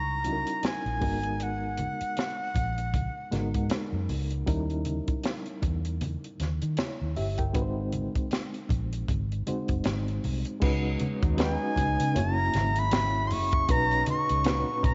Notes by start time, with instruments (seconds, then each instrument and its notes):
Already playing: fingered electric bass C#2, reed electric piano G3 C#4 D#4 E4 A#4, flute A#5
0.24 reed electric piano G3 C#4 D#4 E4 F#4, closed hi-hat, high conga
0.32 reed electric piano A#4
0.47 closed hi-hat
0.63 flute G#5, snare, closed hi-hat, high conga
0.85 fingered electric bass A#1, closed hi-hat
1.01 fingered electric bass G#1, reed electric piano G#3 B3 D#4 F#4 A#4, kick, open hi-hat, low conga
1.23 closed hi-hat
1.40 flute F#5, closed hi-hat
1.77 closed hi-hat, muted conga, high conga
2.01 muted fingered electric bass stroke, closed hi-hat
2.17 snare, closed hi-hat, muted conga
2.54 fingered electric bass A#1, kick, closed hi-hat, muted conga, low conga
2.78 closed hi-hat
2.94 kick, closed hi-hat, muted conga, high conga, low conga
3.32 fingered electric bass G#1, reed electric piano G#3 B3 D#4 F#4 A#4, snare, closed hi-hat, muted conga, high conga
3.54 fingered electric bass G#2, kick, closed hi-hat
3.70 snare, closed hi-hat, muted conga, high conga
3.93 fingered electric bass F#2
4.09 fingered electric bass C#2, open hi-hat, muted conga, low conga
4.30 closed hi-hat
4.46 fingered electric bass D#2, reed electric piano G3 C#4 D#4 E4 A#4, kick, closed hi-hat
4.70 closed hi-hat
4.85 closed hi-hat, high conga
5.08 muted fingered electric bass stroke, kick, closed hi-hat
5.23 snare, closed hi-hat
5.46 closed hi-hat
5.62 fingered electric bass E2, kick, closed hi-hat, muted conga, low conga
5.85 closed hi-hat
6.01 closed hi-hat, muted conga, high conga, low conga
6.24 closed hi-hat
6.40 fingered electric bass D#2, snare, closed hi-hat, muted conga, high conga
6.62 fingered electric bass D#3, closed hi-hat
6.77 reed electric piano E4 C#5, snare, closed hi-hat, muted conga, high conga
7.01 fingered electric bass D#2
7.16 fingered electric bass G1, reed electric piano G4 E5, open hi-hat, low conga
7.38 reed electric piano A#4 G5, kick, closed hi-hat
7.53 fingered electric bass G#1, reed electric piano G#3 C4 D#4 F#4 B4, kick, closed hi-hat, muted conga
7.62 reed electric piano C5
7.92 closed hi-hat, high conga
8.15 muted fingered electric bass stroke, kick, closed hi-hat
8.31 snare, closed hi-hat, muted conga
8.54 closed hi-hat
8.69 fingered electric bass A#1, kick, closed hi-hat, muted conga, low conga
8.93 closed hi-hat
9.08 fingered electric bass G#1, kick, closed hi-hat, muted conga, high conga, low conga
9.32 closed hi-hat
9.46 reed electric piano G#3 C4 D#4 F#4 C5, muted fingered electric bass stroke, closed hi-hat, muted conga, high conga
9.68 fingered electric bass F#1, kick, closed hi-hat
9.84 fingered electric bass G#1, snare, closed hi-hat, muted conga, high conga
10.08 closed hi-hat
10.24 fingered electric bass C2, open hi-hat, muted conga, low conga
10.45 closed hi-hat
10.60 fingered electric bass C#2, french horn section C#3 F#3 B3 D#4, reed electric piano G#3 C#4 D#4 F#4 B4, kick, crash, muted conga
11.00 closed hi-hat, muted conga, high conga
11.22 fingered electric bass D#2, kick, closed hi-hat
11.37 reed electric piano G#3 C#4 D#4 F#4 B4, snare, closed hi-hat, muted conga
11.43 flute G#5
11.76 fingered electric bass C#2, kick, closed hi-hat, muted conga, low conga
12.00 fingered electric bass C#3, closed hi-hat
12.14 fingered electric bass F#1, french horn section F#3 C#4 E4, reed electric piano A#3 C#4 E4 F#4 C#5, closed hi-hat, muted conga, high conga, low conga
12.19 flute A#5
12.54 fingered electric bass G#1, snare, closed hi-hat, muted conga, high conga
12.76 flute B5, closed hi-hat
12.91 snare, closed hi-hat, muted conga, high conga
13.27 fingered electric bass F#1, flute C6, open hi-hat, muted conga, low conga
13.33 flute C#6
13.52 kick, closed hi-hat
13.68 fingered electric bass B1, reed electric piano A#2 C#4 D#4 F#4 B4, french horn section D#4 B4, flute A#5, kick, closed hi-hat
13.91 closed hi-hat
14.06 flute C#6, closed hi-hat, muted conga, high conga
14.29 fingered electric bass C#2, closed hi-hat
14.44 reed electric piano A#2 C#4 D#4 F#4 B4, snare, closed hi-hat
14.83 fingered electric bass B1, flute A#5, kick, closed hi-hat, low conga